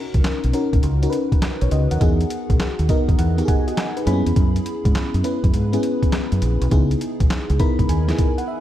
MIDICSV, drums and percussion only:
0, 0, Header, 1, 2, 480
1, 0, Start_track
1, 0, Key_signature, 5, "major"
1, 0, Tempo, 588235
1, 1639, Time_signature, 4, 2, 24, 8
1, 7019, End_track
2, 0, Start_track
2, 0, Title_t, "Drums"
2, 115, Note_on_c, 9, 42, 55
2, 118, Note_on_c, 9, 36, 92
2, 197, Note_off_c, 9, 42, 0
2, 197, Note_on_c, 9, 42, 68
2, 198, Note_on_c, 9, 38, 113
2, 199, Note_off_c, 9, 36, 0
2, 204, Note_on_c, 9, 39, 82
2, 279, Note_off_c, 9, 42, 0
2, 280, Note_off_c, 9, 38, 0
2, 286, Note_off_c, 9, 39, 0
2, 356, Note_on_c, 9, 42, 46
2, 436, Note_off_c, 9, 42, 0
2, 436, Note_on_c, 9, 42, 73
2, 518, Note_off_c, 9, 42, 0
2, 597, Note_on_c, 9, 36, 86
2, 597, Note_on_c, 9, 42, 53
2, 676, Note_off_c, 9, 42, 0
2, 676, Note_on_c, 9, 42, 83
2, 678, Note_off_c, 9, 36, 0
2, 758, Note_off_c, 9, 42, 0
2, 837, Note_on_c, 9, 42, 52
2, 918, Note_off_c, 9, 42, 0
2, 918, Note_on_c, 9, 42, 68
2, 1000, Note_off_c, 9, 42, 0
2, 1077, Note_on_c, 9, 36, 82
2, 1079, Note_on_c, 9, 42, 50
2, 1159, Note_off_c, 9, 36, 0
2, 1159, Note_off_c, 9, 42, 0
2, 1159, Note_on_c, 9, 38, 102
2, 1159, Note_on_c, 9, 42, 76
2, 1165, Note_on_c, 9, 39, 83
2, 1240, Note_off_c, 9, 38, 0
2, 1240, Note_off_c, 9, 42, 0
2, 1246, Note_off_c, 9, 39, 0
2, 1317, Note_on_c, 9, 42, 51
2, 1398, Note_off_c, 9, 42, 0
2, 1398, Note_on_c, 9, 42, 61
2, 1480, Note_off_c, 9, 42, 0
2, 1559, Note_on_c, 9, 42, 58
2, 1640, Note_off_c, 9, 42, 0
2, 1640, Note_on_c, 9, 36, 109
2, 1640, Note_on_c, 9, 42, 79
2, 1721, Note_off_c, 9, 36, 0
2, 1721, Note_off_c, 9, 42, 0
2, 1799, Note_on_c, 9, 42, 54
2, 1880, Note_off_c, 9, 42, 0
2, 1880, Note_on_c, 9, 42, 72
2, 1962, Note_off_c, 9, 42, 0
2, 2038, Note_on_c, 9, 36, 93
2, 2039, Note_on_c, 9, 42, 56
2, 2118, Note_off_c, 9, 42, 0
2, 2118, Note_on_c, 9, 42, 63
2, 2119, Note_on_c, 9, 38, 112
2, 2120, Note_off_c, 9, 36, 0
2, 2125, Note_on_c, 9, 39, 86
2, 2200, Note_off_c, 9, 42, 0
2, 2201, Note_off_c, 9, 38, 0
2, 2207, Note_off_c, 9, 39, 0
2, 2277, Note_on_c, 9, 42, 50
2, 2358, Note_off_c, 9, 42, 0
2, 2358, Note_on_c, 9, 42, 71
2, 2359, Note_on_c, 9, 36, 88
2, 2440, Note_off_c, 9, 36, 0
2, 2440, Note_off_c, 9, 42, 0
2, 2517, Note_on_c, 9, 36, 83
2, 2519, Note_on_c, 9, 42, 52
2, 2599, Note_off_c, 9, 36, 0
2, 2600, Note_off_c, 9, 42, 0
2, 2600, Note_on_c, 9, 42, 89
2, 2682, Note_off_c, 9, 42, 0
2, 2760, Note_on_c, 9, 42, 52
2, 2841, Note_off_c, 9, 42, 0
2, 2841, Note_on_c, 9, 36, 92
2, 2841, Note_on_c, 9, 42, 72
2, 2922, Note_off_c, 9, 36, 0
2, 2923, Note_off_c, 9, 42, 0
2, 3001, Note_on_c, 9, 42, 54
2, 3079, Note_off_c, 9, 42, 0
2, 3079, Note_on_c, 9, 38, 98
2, 3079, Note_on_c, 9, 42, 77
2, 3085, Note_on_c, 9, 39, 81
2, 3161, Note_off_c, 9, 38, 0
2, 3161, Note_off_c, 9, 42, 0
2, 3167, Note_off_c, 9, 39, 0
2, 3238, Note_on_c, 9, 42, 54
2, 3319, Note_off_c, 9, 42, 0
2, 3319, Note_on_c, 9, 42, 68
2, 3401, Note_off_c, 9, 42, 0
2, 3480, Note_on_c, 9, 42, 62
2, 3560, Note_off_c, 9, 42, 0
2, 3560, Note_on_c, 9, 36, 113
2, 3560, Note_on_c, 9, 42, 80
2, 3641, Note_off_c, 9, 42, 0
2, 3642, Note_off_c, 9, 36, 0
2, 3720, Note_on_c, 9, 42, 51
2, 3802, Note_off_c, 9, 42, 0
2, 3802, Note_on_c, 9, 42, 80
2, 3883, Note_off_c, 9, 42, 0
2, 3959, Note_on_c, 9, 36, 97
2, 3960, Note_on_c, 9, 42, 58
2, 4039, Note_off_c, 9, 42, 0
2, 4039, Note_on_c, 9, 42, 64
2, 4040, Note_on_c, 9, 38, 105
2, 4041, Note_off_c, 9, 36, 0
2, 4046, Note_on_c, 9, 39, 93
2, 4120, Note_off_c, 9, 42, 0
2, 4121, Note_off_c, 9, 38, 0
2, 4127, Note_off_c, 9, 39, 0
2, 4197, Note_on_c, 9, 42, 49
2, 4277, Note_off_c, 9, 42, 0
2, 4277, Note_on_c, 9, 42, 68
2, 4359, Note_off_c, 9, 42, 0
2, 4437, Note_on_c, 9, 36, 83
2, 4438, Note_on_c, 9, 42, 54
2, 4517, Note_off_c, 9, 42, 0
2, 4517, Note_on_c, 9, 42, 81
2, 4519, Note_off_c, 9, 36, 0
2, 4599, Note_off_c, 9, 42, 0
2, 4678, Note_on_c, 9, 42, 53
2, 4758, Note_off_c, 9, 42, 0
2, 4758, Note_on_c, 9, 42, 69
2, 4839, Note_off_c, 9, 42, 0
2, 4917, Note_on_c, 9, 36, 75
2, 4919, Note_on_c, 9, 42, 52
2, 4997, Note_off_c, 9, 42, 0
2, 4997, Note_on_c, 9, 38, 99
2, 4997, Note_on_c, 9, 42, 76
2, 4998, Note_off_c, 9, 36, 0
2, 5003, Note_on_c, 9, 39, 81
2, 5079, Note_off_c, 9, 38, 0
2, 5079, Note_off_c, 9, 42, 0
2, 5085, Note_off_c, 9, 39, 0
2, 5156, Note_on_c, 9, 42, 56
2, 5238, Note_off_c, 9, 42, 0
2, 5238, Note_on_c, 9, 42, 70
2, 5319, Note_off_c, 9, 42, 0
2, 5399, Note_on_c, 9, 42, 58
2, 5478, Note_off_c, 9, 42, 0
2, 5478, Note_on_c, 9, 42, 72
2, 5479, Note_on_c, 9, 36, 109
2, 5560, Note_off_c, 9, 42, 0
2, 5561, Note_off_c, 9, 36, 0
2, 5639, Note_on_c, 9, 42, 48
2, 5721, Note_off_c, 9, 42, 0
2, 5721, Note_on_c, 9, 42, 80
2, 5803, Note_off_c, 9, 42, 0
2, 5878, Note_on_c, 9, 36, 90
2, 5878, Note_on_c, 9, 42, 57
2, 5958, Note_off_c, 9, 42, 0
2, 5958, Note_on_c, 9, 42, 70
2, 5959, Note_on_c, 9, 38, 111
2, 5960, Note_off_c, 9, 36, 0
2, 5965, Note_on_c, 9, 39, 88
2, 6040, Note_off_c, 9, 42, 0
2, 6041, Note_off_c, 9, 38, 0
2, 6047, Note_off_c, 9, 39, 0
2, 6117, Note_on_c, 9, 42, 47
2, 6198, Note_off_c, 9, 42, 0
2, 6198, Note_on_c, 9, 42, 73
2, 6199, Note_on_c, 9, 36, 94
2, 6279, Note_off_c, 9, 42, 0
2, 6280, Note_off_c, 9, 36, 0
2, 6357, Note_on_c, 9, 36, 81
2, 6359, Note_on_c, 9, 42, 54
2, 6439, Note_off_c, 9, 36, 0
2, 6439, Note_off_c, 9, 42, 0
2, 6439, Note_on_c, 9, 42, 88
2, 6521, Note_off_c, 9, 42, 0
2, 6597, Note_on_c, 9, 38, 66
2, 6600, Note_on_c, 9, 42, 48
2, 6679, Note_off_c, 9, 38, 0
2, 6679, Note_off_c, 9, 42, 0
2, 6679, Note_on_c, 9, 42, 75
2, 6680, Note_on_c, 9, 36, 88
2, 6760, Note_off_c, 9, 42, 0
2, 6762, Note_off_c, 9, 36, 0
2, 6840, Note_on_c, 9, 42, 48
2, 6922, Note_off_c, 9, 42, 0
2, 7019, End_track
0, 0, End_of_file